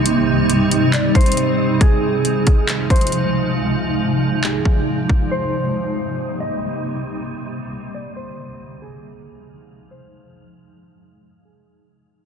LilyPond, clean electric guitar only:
\new Staff \with { instrumentName = "Clean electric guitar" } { \time 4/4 \key f \dorian \tempo 4 = 137 r2 d''8 c''4. | aes'2~ aes'8 c''4. | r2 aes'4 r4 | c''2~ c''8 ees''4. |
r2 d''8 c''4. | aes'2~ aes'8 c''4. | r2 aes'4 r4 | }